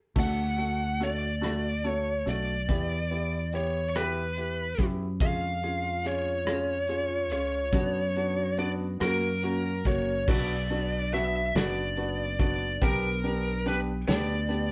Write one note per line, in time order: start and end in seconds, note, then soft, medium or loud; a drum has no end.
0.16 2.23 D2 medium
0.16 0.42 A3 medium
0.16 0.42 D4 medium
0.16 0.42 F#4 medium
0.16 kick medium
0.16 crash medium
0.20 1.05 F#5 medium
0.58 0.84 A3 medium
0.58 0.84 D4 medium
0.58 0.84 F#4 medium
0.58 closed hi-hat soft
1.00 1.26 A3 medium
1.00 1.26 D4 medium
1.00 1.26 F#4 medium
1.00 1.87 D5 medium
1.00 closed hi-hat medium
1.41 1.68 A3 medium
1.41 1.68 D4 medium
1.41 1.68 F#4 medium
1.41 cross-stick medium
1.41 closed hi-hat medium
1.84 2.10 A3 medium
1.84 2.10 D4 medium
1.84 2.11 F#4 medium
1.84 2.28 C#5 medium
1.84 closed hi-hat soft
2.26 2.66 B1 medium
2.26 2.52 A3 medium
2.26 2.52 D4 medium
2.26 2.52 F#4 medium
2.26 3.55 D5 medium
2.26 closed hi-hat medium
2.68 4.75 E2 medium
2.68 2.94 B3 medium
2.68 2.95 E4 medium
2.68 2.95 G4 medium
2.68 kick medium
2.68 closed hi-hat medium
3.10 3.36 B3 medium
3.10 3.37 E4 medium
3.10 3.37 G4 medium
3.10 closed hi-hat soft
3.53 3.79 B3 medium
3.53 3.79 E4 medium
3.53 3.79 G4 medium
3.53 3.88 C#5 medium
3.53 closed hi-hat medium
3.89 3.96 C#5 soft
3.95 4.21 B3 medium
3.95 4.21 E4 medium
3.95 4.21 G4 loud
3.95 4.86 B4 medium
3.95 cross-stick loud
3.95 closed hi-hat medium
4.36 4.63 E4 medium
4.36 4.63 G4 medium
4.36 closed hi-hat medium
4.78 5.18 F#2 medium
4.78 5.05 B3 medium
4.78 5.05 E4 medium
4.78 5.05 G4 medium
4.78 kick medium
4.78 closed hi-hat medium
5.20 7.31 F2 medium
5.20 5.40 G#3 medium
5.20 5.47 C#4 medium
5.20 5.47 F4 medium
5.20 5.47 G#4 medium
5.20 6.08 F5 medium
5.20 kick loud
5.20 closed hi-hat medium
5.41 6.24 G#3 soft
5.62 6.03 C#4 medium
5.62 5.89 C#4 medium
5.62 5.89 F4 medium
5.62 5.89 G#4 medium
5.62 closed hi-hat soft
5.83 7.08 F4 medium
6.04 6.87 C#4 medium
6.04 6.31 C#4 medium
6.04 6.31 F4 medium
6.04 6.31 G#4 medium
6.04 7.31 C#5 medium
6.04 closed hi-hat medium
6.25 6.44 G#3 medium
6.45 6.65 G#3 medium
6.45 6.73 C#4 medium
6.45 6.73 F4 medium
6.45 6.73 G#4 medium
6.45 cross-stick loud
6.45 closed hi-hat medium
6.66 7.50 G#3 medium
6.87 7.29 C#4 medium
6.87 7.15 C#4 medium
6.87 7.15 F4 medium
6.87 7.15 G#4 medium
6.87 closed hi-hat soft
7.09 7.81 F4 medium
7.30 7.71 C#2 medium
7.30 7.81 C#4 medium
7.30 7.57 C#4 medium
7.30 7.57 F4 medium
7.30 7.57 G#4 medium
7.30 8.59 C#5 medium
7.30 closed hi-hat medium
7.51 7.72 G#3 medium
7.72 8.96 F#2 medium
7.72 7.92 B3 medium
7.72 7.99 B3 medium
7.72 7.99 D4 medium
7.72 7.99 F#4 loud
7.72 kick medium
7.72 closed hi-hat medium
8.15 8.42 B3 medium
8.15 8.56 D4 medium
8.15 8.42 D4 medium
8.15 8.42 F#4 medium
8.15 closed hi-hat soft
8.36 9.63 F#4 medium
8.57 8.84 B3 medium
8.57 9.09 D4 medium
8.57 8.84 D4 medium
8.57 8.84 F#4 medium
8.57 8.70 D5 medium
8.57 closed hi-hat medium
8.79 9.00 B3 medium
9.00 9.82 F#2 medium
9.00 9.20 A#3 medium
9.00 9.26 A#3 medium
9.00 9.26 C#4 medium
9.00 9.26 F#4 loud
9.00 9.93 A#4 medium
9.00 cross-stick loud
9.00 closed hi-hat medium
9.21 10.06 A#3 soft
9.42 9.69 A#3 medium
9.42 9.84 C#4 medium
9.42 9.69 C#4 medium
9.42 9.69 F#4 medium
9.42 closed hi-hat soft
9.64 11.13 F#4 medium
9.85 10.25 F#1 medium
9.85 10.12 A#3 medium
9.85 10.36 C#4 medium
9.85 10.12 C#4 medium
9.85 10.12 F#4 medium
9.85 10.29 C#5 medium
9.85 kick medium
9.85 closed hi-hat medium
10.07 10.36 A#3 medium
10.28 11.51 B1 loud
10.28 10.54 B3 medium
10.28 10.54 D4 medium
10.28 10.54 F#4 loud
10.28 11.13 D5 medium
10.28 kick loud
10.28 crash medium
10.70 10.96 B3 medium
10.70 10.96 D4 medium
10.70 11.54 D4 medium
10.70 10.97 F#4 medium
10.70 closed hi-hat soft
11.13 11.39 B3 medium
11.13 11.39 D4 medium
11.13 12.90 F#4 medium
11.13 11.39 F#4 medium
11.13 11.56 E5 medium
11.13 snare soft
11.13 closed hi-hat medium
11.55 12.78 F#1 medium
11.55 11.81 B3 medium
11.55 12.39 D4 medium
11.55 11.81 D4 medium
11.55 11.81 F#4 loud
11.55 12.39 D5 loud
11.55 snare loud
11.55 closed hi-hat medium
11.96 12.23 B3 medium
11.96 12.82 B3 medium
11.96 12.23 D4 medium
11.96 12.23 F#4 medium
11.96 closed hi-hat soft
12.39 12.65 B3 medium
12.39 13.23 D4 medium
12.39 12.65 D4 medium
12.39 12.65 F#4 medium
12.39 12.83 D5 loud
12.39 kick medium
12.39 closed hi-hat medium
12.81 14.04 B1 medium
12.81 13.07 B3 medium
12.81 14.49 B3 medium
12.81 13.07 D4 medium
12.81 13.07 G4 loud
12.81 13.67 A#4 medium
12.81 kick medium
12.81 closed hi-hat medium
13.24 13.49 B3 medium
13.24 14.06 D4 medium
13.24 13.49 D4 medium
13.24 13.49 G4 medium
13.24 closed hi-hat soft
13.65 13.91 B3 medium
13.65 13.91 D4 medium
13.65 14.72 G4 medium
13.65 13.91 G4 medium
13.65 13.79 B4 medium
13.65 snare soft
13.65 closed hi-hat soft
14.07 14.72 D2 medium
14.07 14.33 B3 loud
14.07 14.72 D4 medium
14.07 14.33 D4 medium
14.07 14.33 G4 loud
14.07 14.72 D5 medium
14.07 snare loud
14.07 closed hi-hat medium
14.49 14.72 B3 medium
14.49 14.72 D4 medium
14.49 14.72 G4 medium
14.49 closed hi-hat medium